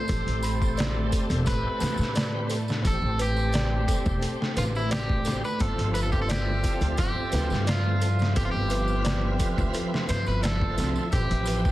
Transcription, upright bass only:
0.09 A1
0.27 A1
1.30 E1
1.47 A1
1.81 E2
1.99 A2
2.85 A1
3.02 A1
4.06 E1
4.56 A1
5.60 G1
5.78 G1
6.81 D2
6.99 G1
7.32 D2
7.51 G2
8.36 G1
8.54 G1
9.58 D2
10.09 G2
10.27 G1
10.78 C2
11.12 A1
11.31 A1

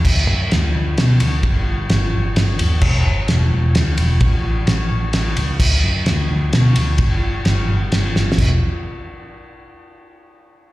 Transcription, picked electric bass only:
0.05 D2
0.28 F#2
0.53 D2
0.75 D2
0.99 B2
1.21 D2
1.44 G1
1.90 G1
2.14 G1
2.38 G1
2.61 D#2
2.82 E1
3.06 G1
3.30 E1
3.52 E1
3.75 D2
3.98 E1
4.21 A1
4.68 A1
4.91 A1
5.15 A1
5.37 C#2
5.60 D2
5.84 F#2
6.07 D2
6.31 D2
6.54 B2
6.77 D2
6.99 G1
7.46 G1
7.69 G1
7.93 G1
8.16 G1
8.38 E1

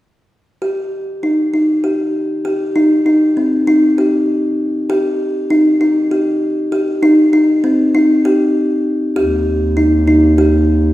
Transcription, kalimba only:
0.62 G4
1.23 D#4
1.54 D#4
1.84 G4
2.45 G4
2.76 D#4
3.06 D#4
3.37 C4
3.67 D#4
3.98 G4
4.90 G4
5.50 D#4
5.81 D#4
6.11 G4
6.72 G4
7.03 D#4
7.33 D#4
7.64 C4
7.95 D#4
8.25 G4
9.16 G4
9.77 D#4
10.07 D#4
10.38 G4

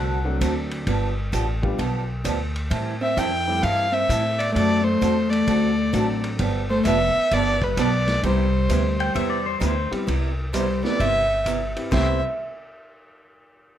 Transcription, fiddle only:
3.02 E5
3.18 G5
3.63 F5
3.93 E5
4.39 D5
4.54 D5
4.84 C5
5.30 D5
6.70 C5
6.86 E5
7.33 D5
7.64 B4
7.80 D5
8.26 C5
10.54 C5
10.85 D5
11.01 E5
11.93 E5

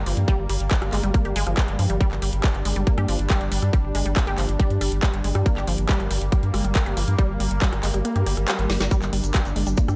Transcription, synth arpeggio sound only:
0.06 F3
0.28 G3
0.50 G3
0.71 G3
0.93 G#3
1.04 G3
1.14 A#3
1.25 G4
1.36 G#3
1.47 F3
1.57 G#3
1.79 F3
1.90 G3
2.01 G3
2.22 G3
2.44 G3
2.65 G#3
2.76 G3
2.87 A#3
2.98 G4
3.09 F3
3.30 G3
3.52 G3
3.73 G3
3.95 G#3
4.06 G3
4.16 A#3
4.27 G4
4.38 F3
4.60 G3
4.81 G3
5.03 G3
5.24 G#3
5.35 G3
5.46 A#3
5.57 G4
5.67 F3
5.89 G3
6.11 G3
6.32 G3
6.54 G#3
6.65 G3
6.75 A#3
6.86 G4
6.97 F3
7.18 G3
7.40 G3
7.62 G3
7.83 G#3
7.94 G3
8.05 A#3
8.16 G4
8.26 G4
8.48 G3
8.70 G3
8.80 G3
8.91 G3
9.13 G3
9.34 G3
9.56 G#3
9.67 G3
9.78 A#3
9.88 G4

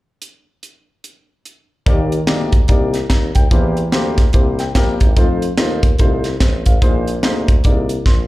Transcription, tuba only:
1.86 D#2
2.28 D2
2.69 C2
3.10 D#2
3.36 D2
3.51 E2
3.92 D2
4.34 C2
4.75 A#1
5.01 G#1
5.17 F2
5.58 D#2
6.00 C2
6.40 A1
6.66 A1
6.82 A#1
7.24 D2
7.65 C2
8.06 A#1

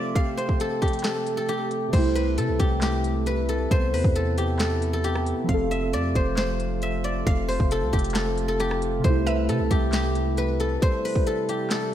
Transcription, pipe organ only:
Already playing: C3 A3 F4
0.15 G4
1.93 C3 A3 E4
3.71 B3
5.49 A3 F4
9.04 E4
10.82 G3

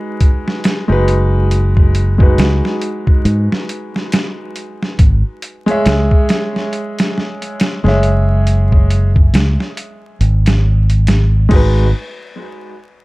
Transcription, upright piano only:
Already playing: G#3 D#4 F#4 B4
0.88 G#3 D#4 F#4
0.92 B4
2.18 G#3 D#4 F#4
2.23 B4
5.66 G#3 G#4 C#5
5.71 E5
7.84 G#3 G#4 C#5
7.88 E5
11.49 G#3 D#4
11.53 F#4 B4

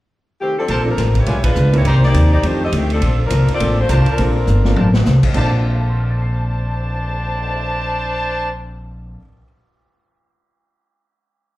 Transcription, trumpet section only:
0.68 D4 A#4 C5 A5
1.26 F4 B4 D5 G#5
1.85 D#4 C5 D5 A#5
3.88 D4 A#4 C5 A5
4.76 D4 A#4 C5 A5
5.35 D4 C5 A5

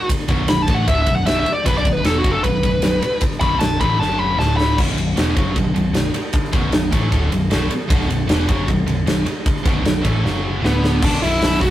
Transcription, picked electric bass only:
0.29 B0
0.48 B0
0.68 A1
0.88 D1
1.07 B0
1.27 B0
1.46 muted picked electric bass stroke
1.66 B0
1.85 B0
2.04 E1
2.24 F#1
2.44 B0
2.64 B0
2.83 B0
3.03 muted picked electric bass stroke
3.41 B0
3.60 B0
3.81 A1
3.99 F#1
4.38 D1
4.78 B0
4.96 B0
5.16 E1
5.37 F#1
5.56 B0
5.74 B0
5.93 B0
6.14 muted picked electric bass stroke
6.53 B0
6.72 B0
6.93 A1
7.12 D1
7.31 B0
7.51 B0
7.71 muted picked electric bass stroke
7.90 B0
8.08 B0
8.28 E1
8.49 F#1
8.68 B0
8.87 B0
9.07 B0
9.26 muted picked electric bass stroke
9.65 B0
9.84 B0
10.05 A1
10.24 F#1
10.63 D1
11.03 B0
11.22 B0
11.41 B0
11.61 B0

